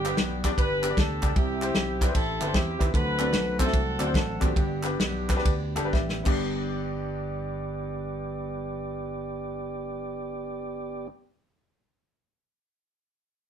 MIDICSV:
0, 0, Header, 1, 6, 480
1, 0, Start_track
1, 0, Key_signature, 1, "major"
1, 0, Tempo, 393959
1, 1666, Time_signature, 4, 2, 24, 8
1, 4550, Tempo, 416089
1, 5510, Tempo, 446429
1, 6470, Tempo, 493827
1, 7430, Tempo, 524476
1, 13882, End_track
2, 0, Start_track
2, 0, Title_t, "Grand piano"
2, 0, Program_c, 0, 0
2, 0, Note_on_c, 0, 43, 64
2, 58, Note_on_c, 0, 62, 71
2, 68, Note_on_c, 0, 67, 72
2, 76, Note_on_c, 0, 71, 81
2, 168, Note_off_c, 0, 62, 0
2, 173, Note_off_c, 0, 67, 0
2, 177, Note_off_c, 0, 71, 0
2, 493, Note_off_c, 0, 43, 0
2, 536, Note_on_c, 0, 62, 89
2, 541, Note_on_c, 0, 67, 80
2, 554, Note_on_c, 0, 74, 97
2, 593, Note_off_c, 0, 62, 0
2, 596, Note_off_c, 0, 67, 0
2, 602, Note_off_c, 0, 74, 0
2, 623, Note_on_c, 0, 67, 61
2, 626, Note_on_c, 0, 62, 68
2, 634, Note_on_c, 0, 74, 77
2, 753, Note_off_c, 0, 67, 0
2, 755, Note_off_c, 0, 62, 0
2, 759, Note_off_c, 0, 74, 0
2, 1001, Note_on_c, 0, 62, 67
2, 1016, Note_on_c, 0, 67, 68
2, 1016, Note_on_c, 0, 71, 75
2, 1065, Note_off_c, 0, 62, 0
2, 1072, Note_off_c, 0, 67, 0
2, 1072, Note_off_c, 0, 71, 0
2, 1091, Note_on_c, 0, 62, 70
2, 1099, Note_on_c, 0, 67, 61
2, 1104, Note_on_c, 0, 74, 80
2, 1226, Note_off_c, 0, 62, 0
2, 1230, Note_off_c, 0, 67, 0
2, 1233, Note_off_c, 0, 74, 0
2, 1490, Note_on_c, 0, 62, 67
2, 1496, Note_on_c, 0, 74, 72
2, 1498, Note_on_c, 0, 67, 63
2, 1602, Note_off_c, 0, 62, 0
2, 1605, Note_off_c, 0, 74, 0
2, 1606, Note_off_c, 0, 67, 0
2, 1654, Note_on_c, 0, 48, 61
2, 1968, Note_on_c, 0, 64, 72
2, 1971, Note_on_c, 0, 67, 69
2, 1979, Note_on_c, 0, 72, 83
2, 2080, Note_off_c, 0, 64, 0
2, 2082, Note_off_c, 0, 67, 0
2, 2086, Note_off_c, 0, 72, 0
2, 2404, Note_off_c, 0, 48, 0
2, 2449, Note_on_c, 0, 64, 76
2, 2454, Note_on_c, 0, 67, 72
2, 2459, Note_on_c, 0, 74, 79
2, 2507, Note_off_c, 0, 64, 0
2, 2510, Note_off_c, 0, 67, 0
2, 2512, Note_off_c, 0, 74, 0
2, 2526, Note_on_c, 0, 64, 69
2, 2538, Note_on_c, 0, 72, 81
2, 2540, Note_on_c, 0, 67, 70
2, 2662, Note_off_c, 0, 64, 0
2, 2668, Note_off_c, 0, 72, 0
2, 2669, Note_off_c, 0, 67, 0
2, 2922, Note_on_c, 0, 64, 64
2, 2934, Note_on_c, 0, 67, 62
2, 2943, Note_on_c, 0, 71, 77
2, 2983, Note_off_c, 0, 64, 0
2, 2989, Note_off_c, 0, 67, 0
2, 2993, Note_off_c, 0, 71, 0
2, 3005, Note_on_c, 0, 64, 69
2, 3012, Note_on_c, 0, 67, 65
2, 3022, Note_on_c, 0, 72, 81
2, 3141, Note_off_c, 0, 64, 0
2, 3144, Note_off_c, 0, 67, 0
2, 3149, Note_off_c, 0, 72, 0
2, 3393, Note_on_c, 0, 64, 74
2, 3398, Note_on_c, 0, 67, 66
2, 3410, Note_on_c, 0, 71, 80
2, 3511, Note_off_c, 0, 64, 0
2, 3514, Note_off_c, 0, 67, 0
2, 3520, Note_off_c, 0, 71, 0
2, 3585, Note_on_c, 0, 50, 68
2, 3886, Note_on_c, 0, 62, 69
2, 3888, Note_on_c, 0, 60, 73
2, 3891, Note_on_c, 0, 66, 67
2, 3892, Note_on_c, 0, 69, 69
2, 3898, Note_on_c, 0, 74, 84
2, 3999, Note_off_c, 0, 60, 0
2, 3999, Note_off_c, 0, 62, 0
2, 4001, Note_off_c, 0, 66, 0
2, 4002, Note_off_c, 0, 69, 0
2, 4004, Note_off_c, 0, 74, 0
2, 4334, Note_off_c, 0, 50, 0
2, 4370, Note_on_c, 0, 60, 77
2, 4370, Note_on_c, 0, 62, 67
2, 4374, Note_on_c, 0, 66, 74
2, 4377, Note_on_c, 0, 72, 83
2, 4378, Note_on_c, 0, 69, 70
2, 4428, Note_off_c, 0, 60, 0
2, 4430, Note_off_c, 0, 62, 0
2, 4432, Note_off_c, 0, 66, 0
2, 4434, Note_off_c, 0, 69, 0
2, 4434, Note_off_c, 0, 72, 0
2, 4446, Note_on_c, 0, 60, 64
2, 4450, Note_on_c, 0, 62, 59
2, 4453, Note_on_c, 0, 66, 65
2, 4453, Note_on_c, 0, 69, 60
2, 4457, Note_on_c, 0, 76, 78
2, 4586, Note_off_c, 0, 60, 0
2, 4588, Note_off_c, 0, 62, 0
2, 4589, Note_off_c, 0, 66, 0
2, 4589, Note_off_c, 0, 69, 0
2, 4591, Note_off_c, 0, 76, 0
2, 4842, Note_on_c, 0, 60, 70
2, 4845, Note_on_c, 0, 62, 62
2, 4847, Note_on_c, 0, 66, 70
2, 4850, Note_on_c, 0, 69, 66
2, 4856, Note_on_c, 0, 74, 78
2, 4903, Note_off_c, 0, 60, 0
2, 4905, Note_off_c, 0, 62, 0
2, 4906, Note_off_c, 0, 66, 0
2, 4907, Note_off_c, 0, 69, 0
2, 4910, Note_off_c, 0, 74, 0
2, 4921, Note_on_c, 0, 60, 69
2, 4930, Note_on_c, 0, 62, 64
2, 4933, Note_on_c, 0, 66, 64
2, 4934, Note_on_c, 0, 69, 59
2, 4937, Note_on_c, 0, 72, 76
2, 5059, Note_off_c, 0, 60, 0
2, 5064, Note_off_c, 0, 62, 0
2, 5065, Note_off_c, 0, 66, 0
2, 5066, Note_off_c, 0, 69, 0
2, 5067, Note_off_c, 0, 72, 0
2, 5320, Note_on_c, 0, 60, 69
2, 5321, Note_on_c, 0, 66, 64
2, 5323, Note_on_c, 0, 62, 62
2, 5326, Note_on_c, 0, 69, 58
2, 5330, Note_on_c, 0, 74, 75
2, 5439, Note_off_c, 0, 60, 0
2, 5440, Note_off_c, 0, 66, 0
2, 5441, Note_off_c, 0, 62, 0
2, 5442, Note_off_c, 0, 69, 0
2, 5444, Note_off_c, 0, 74, 0
2, 5495, Note_on_c, 0, 43, 68
2, 5793, Note_on_c, 0, 62, 73
2, 5808, Note_on_c, 0, 67, 69
2, 5815, Note_on_c, 0, 71, 83
2, 5910, Note_off_c, 0, 62, 0
2, 5917, Note_off_c, 0, 67, 0
2, 5921, Note_off_c, 0, 71, 0
2, 6249, Note_off_c, 0, 43, 0
2, 6279, Note_on_c, 0, 62, 69
2, 6287, Note_on_c, 0, 67, 67
2, 6295, Note_on_c, 0, 71, 81
2, 6344, Note_off_c, 0, 62, 0
2, 6348, Note_off_c, 0, 67, 0
2, 6352, Note_off_c, 0, 71, 0
2, 6365, Note_on_c, 0, 62, 87
2, 6371, Note_on_c, 0, 67, 73
2, 6373, Note_on_c, 0, 71, 96
2, 6505, Note_off_c, 0, 62, 0
2, 6508, Note_off_c, 0, 67, 0
2, 6509, Note_off_c, 0, 71, 0
2, 6757, Note_on_c, 0, 62, 86
2, 6762, Note_on_c, 0, 67, 78
2, 6767, Note_on_c, 0, 69, 86
2, 6817, Note_off_c, 0, 62, 0
2, 6820, Note_off_c, 0, 67, 0
2, 6822, Note_off_c, 0, 69, 0
2, 6837, Note_on_c, 0, 62, 81
2, 6844, Note_on_c, 0, 67, 70
2, 6850, Note_on_c, 0, 71, 92
2, 6917, Note_off_c, 0, 71, 0
2, 6927, Note_on_c, 0, 76, 67
2, 6932, Note_on_c, 0, 71, 55
2, 6974, Note_off_c, 0, 62, 0
2, 6977, Note_off_c, 0, 67, 0
2, 7225, Note_on_c, 0, 59, 74
2, 7236, Note_off_c, 0, 76, 0
2, 7237, Note_on_c, 0, 62, 67
2, 7239, Note_off_c, 0, 71, 0
2, 7243, Note_on_c, 0, 43, 74
2, 7252, Note_on_c, 0, 67, 71
2, 7265, Note_on_c, 0, 74, 86
2, 11639, Note_off_c, 0, 59, 0
2, 11651, Note_off_c, 0, 62, 0
2, 11657, Note_off_c, 0, 43, 0
2, 11666, Note_off_c, 0, 67, 0
2, 11678, Note_off_c, 0, 74, 0
2, 13882, End_track
3, 0, Start_track
3, 0, Title_t, "Horn section"
3, 0, Program_c, 1, 61
3, 0, Note_on_c, 1, 59, 68
3, 0, Note_on_c, 1, 62, 68
3, 0, Note_on_c, 1, 67, 92
3, 499, Note_off_c, 1, 67, 0
3, 656, Note_off_c, 1, 59, 0
3, 657, Note_off_c, 1, 62, 0
3, 710, Note_on_c, 1, 62, 80
3, 710, Note_on_c, 1, 67, 89
3, 715, Note_on_c, 1, 71, 116
3, 1157, Note_off_c, 1, 71, 0
3, 1177, Note_off_c, 1, 62, 0
3, 1191, Note_on_c, 1, 62, 77
3, 1193, Note_on_c, 1, 69, 101
3, 1618, Note_off_c, 1, 67, 0
3, 1634, Note_off_c, 1, 62, 0
3, 1653, Note_on_c, 1, 67, 100
3, 1654, Note_on_c, 1, 60, 72
3, 1656, Note_on_c, 1, 64, 70
3, 1669, Note_off_c, 1, 69, 0
3, 2452, Note_off_c, 1, 67, 0
3, 2464, Note_on_c, 1, 71, 94
3, 2569, Note_off_c, 1, 60, 0
3, 2570, Note_off_c, 1, 64, 0
3, 2612, Note_on_c, 1, 69, 108
3, 2615, Note_on_c, 1, 60, 75
3, 2623, Note_on_c, 1, 64, 79
3, 2626, Note_off_c, 1, 71, 0
3, 3079, Note_off_c, 1, 64, 0
3, 3081, Note_off_c, 1, 60, 0
3, 3094, Note_on_c, 1, 64, 66
3, 3095, Note_on_c, 1, 60, 67
3, 3097, Note_off_c, 1, 69, 0
3, 3100, Note_on_c, 1, 67, 94
3, 3498, Note_off_c, 1, 67, 0
3, 3543, Note_off_c, 1, 64, 0
3, 3544, Note_off_c, 1, 60, 0
3, 3586, Note_on_c, 1, 71, 109
3, 3588, Note_on_c, 1, 66, 73
3, 4335, Note_off_c, 1, 71, 0
3, 4374, Note_off_c, 1, 66, 0
3, 4380, Note_on_c, 1, 69, 90
3, 4382, Note_on_c, 1, 60, 67
3, 4388, Note_on_c, 1, 66, 73
3, 4978, Note_off_c, 1, 69, 0
3, 5023, Note_on_c, 1, 69, 89
3, 5294, Note_off_c, 1, 60, 0
3, 5297, Note_off_c, 1, 66, 0
3, 5318, Note_off_c, 1, 69, 0
3, 5348, Note_on_c, 1, 67, 85
3, 5356, Note_on_c, 1, 59, 59
3, 5356, Note_on_c, 1, 62, 63
3, 5803, Note_off_c, 1, 67, 0
3, 5809, Note_off_c, 1, 62, 0
3, 5810, Note_off_c, 1, 59, 0
3, 5816, Note_on_c, 1, 67, 78
3, 5822, Note_on_c, 1, 62, 58
3, 5823, Note_on_c, 1, 59, 64
3, 6734, Note_off_c, 1, 67, 0
3, 6737, Note_off_c, 1, 59, 0
3, 6737, Note_off_c, 1, 62, 0
3, 13882, End_track
4, 0, Start_track
4, 0, Title_t, "Tonewheel organ"
4, 0, Program_c, 2, 16
4, 0, Note_on_c, 2, 59, 63
4, 0, Note_on_c, 2, 62, 53
4, 0, Note_on_c, 2, 67, 71
4, 1616, Note_off_c, 2, 59, 0
4, 1619, Note_off_c, 2, 62, 0
4, 1620, Note_off_c, 2, 67, 0
4, 1645, Note_on_c, 2, 60, 66
4, 1655, Note_on_c, 2, 64, 57
4, 1655, Note_on_c, 2, 67, 73
4, 3532, Note_off_c, 2, 60, 0
4, 3538, Note_off_c, 2, 64, 0
4, 3538, Note_off_c, 2, 67, 0
4, 3567, Note_on_c, 2, 60, 55
4, 3571, Note_on_c, 2, 69, 69
4, 3572, Note_on_c, 2, 54, 65
4, 3573, Note_on_c, 2, 62, 62
4, 3582, Note_on_c, 2, 57, 55
4, 5465, Note_off_c, 2, 60, 0
4, 5466, Note_off_c, 2, 69, 0
4, 5467, Note_off_c, 2, 54, 0
4, 5468, Note_off_c, 2, 62, 0
4, 5472, Note_off_c, 2, 57, 0
4, 5485, Note_on_c, 2, 59, 63
4, 5488, Note_on_c, 2, 62, 57
4, 5492, Note_on_c, 2, 67, 69
4, 7213, Note_off_c, 2, 59, 0
4, 7215, Note_off_c, 2, 62, 0
4, 7216, Note_off_c, 2, 67, 0
4, 7243, Note_on_c, 2, 74, 85
4, 7247, Note_on_c, 2, 67, 72
4, 7250, Note_on_c, 2, 62, 76
4, 7253, Note_on_c, 2, 59, 78
4, 11657, Note_off_c, 2, 74, 0
4, 11661, Note_off_c, 2, 67, 0
4, 11663, Note_off_c, 2, 62, 0
4, 11666, Note_off_c, 2, 59, 0
4, 13882, End_track
5, 0, Start_track
5, 0, Title_t, "Fingered electric bass"
5, 0, Program_c, 3, 33
5, 0, Note_on_c, 3, 31, 97
5, 155, Note_off_c, 3, 31, 0
5, 226, Note_on_c, 3, 35, 85
5, 634, Note_off_c, 3, 35, 0
5, 703, Note_on_c, 3, 31, 90
5, 1112, Note_off_c, 3, 31, 0
5, 1184, Note_on_c, 3, 38, 99
5, 1452, Note_off_c, 3, 38, 0
5, 1489, Note_on_c, 3, 37, 87
5, 1634, Note_off_c, 3, 37, 0
5, 1657, Note_on_c, 3, 36, 104
5, 2068, Note_off_c, 3, 36, 0
5, 2131, Note_on_c, 3, 35, 96
5, 2544, Note_off_c, 3, 35, 0
5, 2619, Note_on_c, 3, 33, 101
5, 2888, Note_off_c, 3, 33, 0
5, 2934, Note_on_c, 3, 31, 94
5, 3076, Note_off_c, 3, 31, 0
5, 3094, Note_on_c, 3, 40, 94
5, 3365, Note_off_c, 3, 40, 0
5, 3416, Note_on_c, 3, 39, 92
5, 3556, Note_off_c, 3, 39, 0
5, 3579, Note_on_c, 3, 38, 113
5, 4055, Note_on_c, 3, 35, 93
5, 4074, Note_off_c, 3, 38, 0
5, 4473, Note_off_c, 3, 35, 0
5, 4553, Note_on_c, 3, 36, 95
5, 4814, Note_off_c, 3, 36, 0
5, 4846, Note_on_c, 3, 38, 94
5, 5019, Note_on_c, 3, 33, 88
5, 5036, Note_off_c, 3, 38, 0
5, 5290, Note_off_c, 3, 33, 0
5, 5335, Note_on_c, 3, 32, 85
5, 5481, Note_off_c, 3, 32, 0
5, 5507, Note_on_c, 3, 31, 104
5, 5907, Note_off_c, 3, 31, 0
5, 5972, Note_on_c, 3, 35, 84
5, 6392, Note_off_c, 3, 35, 0
5, 6465, Note_on_c, 3, 38, 89
5, 6760, Note_on_c, 3, 31, 84
5, 6775, Note_off_c, 3, 38, 0
5, 6904, Note_off_c, 3, 31, 0
5, 6925, Note_on_c, 3, 33, 86
5, 7202, Note_off_c, 3, 33, 0
5, 7247, Note_on_c, 3, 31, 97
5, 11661, Note_off_c, 3, 31, 0
5, 13882, End_track
6, 0, Start_track
6, 0, Title_t, "Drums"
6, 63, Note_on_c, 9, 51, 67
6, 65, Note_on_c, 9, 39, 92
6, 185, Note_off_c, 9, 51, 0
6, 187, Note_off_c, 9, 39, 0
6, 211, Note_on_c, 9, 38, 118
6, 219, Note_on_c, 9, 51, 80
6, 332, Note_off_c, 9, 38, 0
6, 341, Note_off_c, 9, 51, 0
6, 530, Note_on_c, 9, 38, 37
6, 536, Note_on_c, 9, 36, 93
6, 539, Note_on_c, 9, 51, 66
6, 542, Note_on_c, 9, 39, 113
6, 652, Note_off_c, 9, 38, 0
6, 658, Note_off_c, 9, 36, 0
6, 660, Note_off_c, 9, 51, 0
6, 664, Note_off_c, 9, 39, 0
6, 704, Note_on_c, 9, 36, 113
6, 711, Note_on_c, 9, 51, 95
6, 826, Note_off_c, 9, 36, 0
6, 833, Note_off_c, 9, 51, 0
6, 1015, Note_on_c, 9, 39, 92
6, 1018, Note_on_c, 9, 51, 65
6, 1137, Note_off_c, 9, 39, 0
6, 1140, Note_off_c, 9, 51, 0
6, 1184, Note_on_c, 9, 36, 102
6, 1189, Note_on_c, 9, 51, 76
6, 1190, Note_on_c, 9, 38, 127
6, 1305, Note_off_c, 9, 36, 0
6, 1311, Note_off_c, 9, 51, 0
6, 1312, Note_off_c, 9, 38, 0
6, 1494, Note_on_c, 9, 51, 56
6, 1495, Note_on_c, 9, 39, 100
6, 1496, Note_on_c, 9, 36, 104
6, 1615, Note_off_c, 9, 51, 0
6, 1617, Note_off_c, 9, 39, 0
6, 1618, Note_off_c, 9, 36, 0
6, 1657, Note_on_c, 9, 51, 74
6, 1659, Note_on_c, 9, 36, 122
6, 1779, Note_off_c, 9, 51, 0
6, 1780, Note_off_c, 9, 36, 0
6, 1972, Note_on_c, 9, 39, 91
6, 1986, Note_on_c, 9, 51, 63
6, 2094, Note_off_c, 9, 39, 0
6, 2108, Note_off_c, 9, 51, 0
6, 2129, Note_on_c, 9, 38, 114
6, 2137, Note_on_c, 9, 51, 74
6, 2251, Note_off_c, 9, 38, 0
6, 2259, Note_off_c, 9, 51, 0
6, 2447, Note_on_c, 9, 38, 37
6, 2451, Note_on_c, 9, 36, 93
6, 2456, Note_on_c, 9, 51, 58
6, 2462, Note_on_c, 9, 39, 102
6, 2569, Note_off_c, 9, 38, 0
6, 2573, Note_off_c, 9, 36, 0
6, 2578, Note_off_c, 9, 51, 0
6, 2584, Note_off_c, 9, 39, 0
6, 2616, Note_on_c, 9, 51, 100
6, 2619, Note_on_c, 9, 36, 106
6, 2738, Note_off_c, 9, 51, 0
6, 2741, Note_off_c, 9, 36, 0
6, 2930, Note_on_c, 9, 51, 65
6, 2941, Note_on_c, 9, 39, 94
6, 3052, Note_off_c, 9, 51, 0
6, 3062, Note_off_c, 9, 39, 0
6, 3097, Note_on_c, 9, 51, 74
6, 3098, Note_on_c, 9, 38, 119
6, 3099, Note_on_c, 9, 36, 97
6, 3219, Note_off_c, 9, 51, 0
6, 3220, Note_off_c, 9, 38, 0
6, 3221, Note_off_c, 9, 36, 0
6, 3418, Note_on_c, 9, 36, 97
6, 3421, Note_on_c, 9, 51, 60
6, 3432, Note_on_c, 9, 39, 87
6, 3539, Note_off_c, 9, 36, 0
6, 3543, Note_off_c, 9, 51, 0
6, 3554, Note_off_c, 9, 39, 0
6, 3581, Note_on_c, 9, 36, 111
6, 3590, Note_on_c, 9, 51, 79
6, 3703, Note_off_c, 9, 36, 0
6, 3712, Note_off_c, 9, 51, 0
6, 3890, Note_on_c, 9, 39, 99
6, 3903, Note_on_c, 9, 51, 60
6, 4011, Note_off_c, 9, 39, 0
6, 4025, Note_off_c, 9, 51, 0
6, 4054, Note_on_c, 9, 38, 114
6, 4063, Note_on_c, 9, 51, 83
6, 4176, Note_off_c, 9, 38, 0
6, 4185, Note_off_c, 9, 51, 0
6, 4379, Note_on_c, 9, 36, 87
6, 4383, Note_on_c, 9, 39, 105
6, 4384, Note_on_c, 9, 38, 35
6, 4393, Note_on_c, 9, 51, 69
6, 4478, Note_off_c, 9, 38, 0
6, 4478, Note_on_c, 9, 38, 40
6, 4501, Note_off_c, 9, 36, 0
6, 4505, Note_off_c, 9, 39, 0
6, 4514, Note_off_c, 9, 51, 0
6, 4550, Note_on_c, 9, 51, 90
6, 4551, Note_on_c, 9, 36, 120
6, 4597, Note_off_c, 9, 38, 0
6, 4666, Note_off_c, 9, 36, 0
6, 4666, Note_off_c, 9, 51, 0
6, 4854, Note_on_c, 9, 39, 101
6, 4860, Note_on_c, 9, 51, 67
6, 4970, Note_off_c, 9, 39, 0
6, 4976, Note_off_c, 9, 51, 0
6, 5021, Note_on_c, 9, 36, 92
6, 5029, Note_on_c, 9, 51, 74
6, 5030, Note_on_c, 9, 38, 124
6, 5137, Note_off_c, 9, 36, 0
6, 5144, Note_off_c, 9, 51, 0
6, 5146, Note_off_c, 9, 38, 0
6, 5338, Note_on_c, 9, 39, 99
6, 5339, Note_on_c, 9, 36, 102
6, 5344, Note_on_c, 9, 51, 56
6, 5453, Note_off_c, 9, 39, 0
6, 5455, Note_off_c, 9, 36, 0
6, 5459, Note_off_c, 9, 51, 0
6, 5506, Note_on_c, 9, 36, 119
6, 5510, Note_on_c, 9, 51, 75
6, 5614, Note_off_c, 9, 36, 0
6, 5617, Note_off_c, 9, 51, 0
6, 5795, Note_on_c, 9, 39, 98
6, 5824, Note_on_c, 9, 51, 60
6, 5902, Note_off_c, 9, 39, 0
6, 5931, Note_off_c, 9, 51, 0
6, 5974, Note_on_c, 9, 38, 113
6, 5981, Note_on_c, 9, 51, 87
6, 6081, Note_off_c, 9, 38, 0
6, 6089, Note_off_c, 9, 51, 0
6, 6293, Note_on_c, 9, 38, 37
6, 6293, Note_on_c, 9, 39, 107
6, 6294, Note_on_c, 9, 36, 92
6, 6300, Note_on_c, 9, 51, 63
6, 6390, Note_off_c, 9, 38, 0
6, 6390, Note_on_c, 9, 38, 42
6, 6401, Note_off_c, 9, 36, 0
6, 6401, Note_off_c, 9, 39, 0
6, 6408, Note_off_c, 9, 51, 0
6, 6464, Note_on_c, 9, 36, 110
6, 6465, Note_on_c, 9, 51, 102
6, 6495, Note_off_c, 9, 38, 0
6, 6562, Note_off_c, 9, 36, 0
6, 6562, Note_off_c, 9, 51, 0
6, 6768, Note_on_c, 9, 39, 94
6, 6768, Note_on_c, 9, 51, 69
6, 6865, Note_off_c, 9, 39, 0
6, 6865, Note_off_c, 9, 51, 0
6, 6928, Note_on_c, 9, 36, 101
6, 6932, Note_on_c, 9, 38, 60
6, 7026, Note_off_c, 9, 36, 0
6, 7029, Note_off_c, 9, 38, 0
6, 7085, Note_on_c, 9, 38, 68
6, 7182, Note_off_c, 9, 38, 0
6, 7246, Note_on_c, 9, 49, 88
6, 7247, Note_on_c, 9, 39, 85
6, 7249, Note_on_c, 9, 36, 114
6, 7344, Note_off_c, 9, 39, 0
6, 7344, Note_off_c, 9, 49, 0
6, 7346, Note_off_c, 9, 36, 0
6, 13882, End_track
0, 0, End_of_file